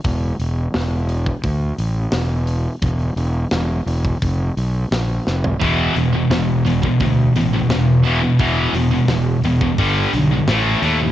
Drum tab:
HH |o-o-o-o-o-o-o-o-|o-o-o-o-o-o-o---|o-o-o-o-o-o-o-o-|o-o-o-o-o-o-o-o-|
SD |----o-------o---|----o-------o-o-|----o-------o---|----o-------o---|
FT |----------------|---------------o|----------------|----------------|
BD |o------oo-------|o------oo-------|o------oo-------|o------oo-------|